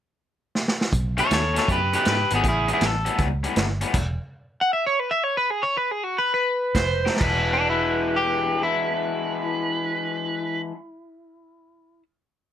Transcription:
0.55 snare
0.68 snare
0.81 snare
0.93 B1, kick, closed hi-hat
1.17 B2 D#3 A3 C#4 A4 C#5, closed hi-hat
1.31 D#2 A4 C#5, snare, closed hi-hat
1.54 B2 D#3 A3 C#4 A4, snare, closed hi-hat
1.59 C#5
1.68 F#2 G4 B4, kick, closed hi-hat
1.93 B2 D#3 A3 C#4 G4 B4, closed hi-hat
2.05 G#2 G4, snare, closed hi-hat
2.09 B4
2.30 G#1 B2 D#3 A3 B3 C#4, closed hi-hat
2.35 G#4
2.43 A1, kick, closed hi-hat
2.48 E4 G#4
2.68 A2 G3 B3 C#4, closed hi-hat
2.73 E4 G#4
2.81 A1, snare, closed hi-hat
2.86 A4
3.05 A2 G3 B3 C#4, closed hi-hat
3.18 C#2, kick, closed hi-hat
3.43 A2 G3 B3 C#4, closed hi-hat
3.56 G1, snare, closed hi-hat
3.81 A2 G3 B3 C#4, closed hi-hat
3.94 E1, kick, closed hi-hat, crash
4.61 F#5
4.73 E5
4.87 C#5
4.99 B4
5.11 E5
5.24 C#5
5.37 B4
5.50 G#4
5.63 C#5
5.77 B4
5.91 G#4
6.04 F#4
6.18 B4
6.34 B4
6.75 F1 C5, kick, snare, closed hi-hat
7.06 F3 A3 D#4 G4, snare
7.16 snare
7.21 E1 E3 G#3 D4 B4, kick, crash
7.26 F#4
7.53 D4
7.70 E4
8.16 G4
8.63 E4

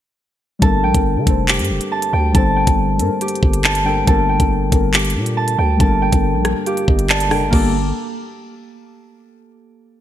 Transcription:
0.59 G1 G3 D4 A4 A5, kick, closed hi-hat
0.65 A#4
0.84 A#1 G5
0.92 G1 G3 D4 A4, kick, closed hi-hat
0.97 A#4
1.16 D3
1.24 F1 G3 D4 A4, kick, closed hi-hat
1.30 C5
1.48 G4, clap, closed hi-hat
1.54 closed hi-hat
1.59 G2, closed hi-hat
1.65 closed hi-hat
1.70 F1
1.81 closed hi-hat
1.92 A5
2.02 closed hi-hat
2.13 D2 G5
2.32 G1 G3 D4 A4 A5, kick, closed hi-hat
2.38 C5
2.56 G5
2.67 G1, kick, closed hi-hat
2.97 G2 G3 D4 A4, closed hi-hat
3.02 A#4
3.21 G4, closed hi-hat
3.28 closed hi-hat
3.35 closed hi-hat
3.43 G1, kick
3.53 closed hi-hat
3.64 A5, clap
3.75 closed hi-hat
3.83 G3 D4 A4 G5
3.89 A#4
4.04 G1 G3 D4 A4 A5, kick, closed hi-hat
4.10 A#4
4.29 G5
4.37 G1 G3 D4 A4, kick, closed hi-hat
4.43 A#4
4.69 G1 G3 D4 A4, kick, closed hi-hat
4.75 A#4
4.94 G4, clap, closed hi-hat
4.99 closed hi-hat
5.05 closed hi-hat
5.10 closed hi-hat
5.15 A#2
5.26 closed hi-hat
5.37 A5
5.48 closed hi-hat
5.59 D2 G5
5.77 G1 G3 D4 A4 A5, kick, closed hi-hat
5.83 A#4
6.02 G5
6.12 G1, kick, closed hi-hat
6.34 A#1
6.42 G3 D4 A4 G5, cross-stick, closed hi-hat
6.48 A#4
6.66 G4 F5, closed hi-hat
6.77 closed hi-hat
6.88 G1 D#5, kick
6.99 closed hi-hat
7.10 D5 A5, clap
7.20 closed hi-hat
7.28 F1 G3 D4 A4 A#4 G5, cross-stick, open hi-hat
7.34 A#4
7.42 G1
7.50 G1 G3 A#3 D4 G4 A4 A#4, kick, crash
7.55 A4

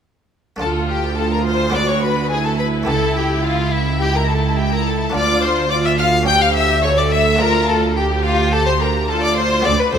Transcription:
0.56 A3 D4 F4
0.61 D2 F4 A4 A5
0.89 G4 G5
1.18 F4 A4 A5
1.32 A#4 A#5
1.46 C5 C6
1.70 G#3 B3 E4
1.75 F#4 D5 D6
1.88 C#5 C#6
2.02 B4 B5
2.31 E4 G#4 G#5
2.45 A4 A5
2.59 B4 B5
2.83 A3 E4 G4 A4 A5
2.88 C#2
3.15 G4 G5
3.44 F4 F5
3.72 E4 E5
4.01 E4 G4 G5
4.15 A#4 A#5
4.29 A4 A5
4.58 G4 G5
4.72 A#4 A#5
4.85 A4 A5
5.10 A3 D4 F4
5.14 D2 F4 D5 D6
5.42 C5 C6
5.70 F4 D5 D6
5.85 E5 E6
5.99 F5 F6
6.23 A3 C#4 G4
6.27 G4 G5 G6
6.42 F5 F6
6.54 E5 E6
6.83 A4 C#5 C#6
6.98 D5 D6
7.11 E5 E6
7.36 A3 D4 F4
7.40 F4 A#4 A#5
7.68 A4 A5
7.97 G4 G5
8.24 F4 F5
8.52 A4 A5
8.66 C5 C6
8.81 A#4 A#5
9.09 F4 A4 A5
9.22 D5 D6
9.37 C5 C6
9.61 A3 B3 F4 D6
9.65 D2 A4 D5
9.79 B4 B5
9.93 D2 A4 C5 C6

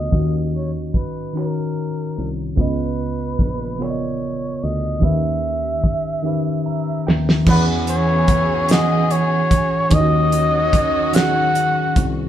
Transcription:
Already playing: C#3 B3 F4 A#4 D#5
0.11 D#2 D#3 C#4 F#4, kick, closed hi-hat
0.16 D#5
0.53 C#5, closed hi-hat
0.94 B4, kick, closed hi-hat
1.33 D#3 C#4 F#4 A#4, finger snap, closed hi-hat
1.39 C#5
1.76 closed hi-hat
2.17 C2, closed hi-hat
2.56 C#2 C#3 B3 F4, kick, closed hi-hat
2.60 B4 D#5
2.98 closed hi-hat
3.39 A#1, kick, closed hi-hat
3.78 C#3 B3 F4 A#4 C#5, closed hi-hat
3.82 D5, finger snap
3.90 D#5
4.21 closed hi-hat
4.62 D2 D#5, closed hi-hat
5.00 D#2 D#3 C#4 G4, kick, closed hi-hat
5.04 B4 E5
5.43 closed hi-hat
5.84 muted fretless electric bass stroke, kick, closed hi-hat
6.23 D#3 C#4 G4 B4
6.28 E5
6.66 A#5
7.07 D#2 G5, snare
7.29 snare
7.45 E2 C#3 E3 B3 C#4 E4 F#4 G#4 B4, kick, crash
7.50 F#5
7.87 C#5, closed hi-hat
8.28 kick, closed hi-hat
8.68 E3 C#4 G#4 D#5, snare, closed hi-hat
8.73 F#5
9.10 C#5, closed hi-hat
9.51 D2, kick, closed hi-hat
9.90 D#2 D#3 F#3 C#4 E4 F#4 D#5, kick, closed hi-hat
9.96 D#5
10.00 F#4
10.32 closed hi-hat
10.73 kick, closed hi-hat
11.12 D#3 C#4 F#4 F#5, snare, closed hi-hat
11.18 G#4
11.55 closed hi-hat
11.96 C2, kick, closed hi-hat

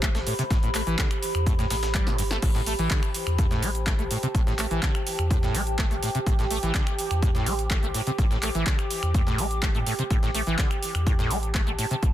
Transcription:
Already playing: A1 G4 C5 B5
0.03 A3, kick, clap, closed hi-hat, cabasa
0.15 A1 A3, snare, closed hi-hat, cabasa
0.27 A2, closed hi-hat, open hi-hat, cabasa
0.39 C3, closed hi-hat, cabasa
0.50 A1 A2, kick, snare, closed hi-hat, cabasa
0.63 A2, closed hi-hat, cabasa
0.74 A3, clap, closed hi-hat, open hi-hat, cabasa
0.87 A1 E3, closed hi-hat, cabasa
0.98 D3, kick, snare, clap, closed hi-hat, cabasa
1.11 finger snap, closed hi-hat, cabasa
1.23 closed hi-hat, open hi-hat, cabasa
1.35 E2, finger snap, closed hi-hat, cabasa
1.46 A2, kick, closed hi-hat, cabasa
1.59 A2, snare, closed hi-hat, cabasa
1.70 A1 A2, snare, closed hi-hat, open hi-hat, cabasa
1.83 snare, closed hi-hat, cabasa
1.94 G3, kick, snare, clap, closed hi-hat, cabasa
2.07 G1 A2, snare, closed hi-hat, cabasa
2.18 G2, closed hi-hat, open hi-hat, cabasa
2.31 A3, snare, closed hi-hat, cabasa
2.42 A1 A2 G4, kick, closed hi-hat, crash, cabasa
2.55 A2, snare, closed hi-hat, cabasa
2.66 A3, closed hi-hat, open hi-hat, cabasa
2.79 A1 E3, closed hi-hat, cabasa
2.90 D3, kick, snare, clap, closed hi-hat, cabasa
3.03 finger snap, closed hi-hat, cabasa
3.14 closed hi-hat, open hi-hat, cabasa
3.27 E2, finger snap, closed hi-hat, cabasa
3.38 A2, kick, closed hi-hat, cabasa
3.46 A5
3.51 A2, snare, closed hi-hat, cabasa
3.63 A1 A3, closed hi-hat, open hi-hat, cabasa
3.75 closed hi-hat, cabasa
3.87 A3, kick, snare, clap, closed hi-hat, cabasa
3.99 A1 A3, closed hi-hat, cabasa
4.11 A2, closed hi-hat, open hi-hat, cabasa
4.23 C3, closed hi-hat, cabasa
4.35 A1 A2, kick, closed hi-hat, cabasa
4.47 A2, snare, closed hi-hat, cabasa
4.59 A3, clap, closed hi-hat, open hi-hat, cabasa
4.71 A1 E3, closed hi-hat, cabasa
4.83 D3, kick, snare, clap, closed hi-hat, cabasa
4.95 finger snap, closed hi-hat, cabasa
5.07 closed hi-hat, open hi-hat, cabasa
5.19 E2, finger snap, cabasa
5.31 A2, kick, closed hi-hat, cabasa
5.43 A2, snare, closed hi-hat, cabasa
5.55 A1 A3, closed hi-hat, open hi-hat, cabasa
5.67 closed hi-hat, cabasa
5.79 A3, kick, snare, clap, closed hi-hat, cabasa
5.91 A1 A3, closed hi-hat, cabasa
6.03 A2, closed hi-hat, open hi-hat, cabasa
6.15 C3, closed hi-hat, cabasa
6.26 A1 A2, kick, closed hi-hat, cabasa
6.39 A2, snare, closed hi-hat, cabasa
6.51 A3, closed hi-hat, open hi-hat, cabasa
6.63 A1 E3, closed hi-hat, cabasa
6.75 D3, kick, snare, clap, closed hi-hat, cabasa
6.87 finger snap, closed hi-hat, cabasa
6.98 closed hi-hat, open hi-hat, cabasa
7.11 E2, finger snap, closed hi-hat, cabasa
7.22 A2, kick, closed hi-hat, cabasa
7.30 D6
7.35 A2, snare, closed hi-hat, cabasa
7.46 A1 A3, closed hi-hat, open hi-hat, cabasa
7.59 closed hi-hat, cabasa
7.70 A3, kick, snare, clap, closed hi-hat, cabasa
7.83 A1 A3, closed hi-hat, cabasa
7.94 A2, closed hi-hat, open hi-hat, cabasa
8.07 C3, closed hi-hat, cabasa
8.18 A1 A2, kick, closed hi-hat, cabasa
8.31 A2, snare, closed hi-hat, cabasa
8.42 A3, clap, closed hi-hat, open hi-hat, cabasa
8.55 A1 E3, closed hi-hat, cabasa
8.66 D3, kick, snare, clap, closed hi-hat, cabasa
8.79 finger snap, closed hi-hat, cabasa
8.90 closed hi-hat, open hi-hat, cabasa
9.03 E2, finger snap, closed hi-hat, cabasa
9.14 A2, kick, closed hi-hat, cabasa
9.27 A2, snare, closed hi-hat, cabasa
9.38 A1 A3, closed hi-hat, open hi-hat, cabasa
9.51 closed hi-hat, cabasa
9.62 A3, kick, snare, clap, closed hi-hat, cabasa
9.75 A2 A3, closed hi-hat, cabasa
9.87 A2, closed hi-hat, open hi-hat, cabasa
9.99 C3, closed hi-hat, cabasa
10.11 A1 A2, kick, closed hi-hat, cabasa
10.23 A2, snare, closed hi-hat, cabasa
10.35 A3, closed hi-hat, open hi-hat, cabasa
10.47 A1 E3, closed hi-hat, cabasa
10.58 D3, kick, snare, clap, closed hi-hat, cabasa
10.71 finger snap, closed hi-hat, cabasa
10.83 closed hi-hat, open hi-hat, cabasa
10.95 E2, finger snap, closed hi-hat, cabasa
11.07 A2, kick, closed hi-hat, cabasa
11.14 A5
11.19 A2, snare, closed hi-hat, cabasa
11.31 A1 A3, closed hi-hat, open hi-hat, cabasa
11.43 closed hi-hat, cabasa
11.55 A3, kick, snare, clap, closed hi-hat, cabasa
11.67 A1 A3, closed hi-hat, cabasa
11.79 A2, closed hi-hat, open hi-hat, cabasa
11.91 C3, closed hi-hat, cabasa
12.03 A1, kick, closed hi-hat, cabasa

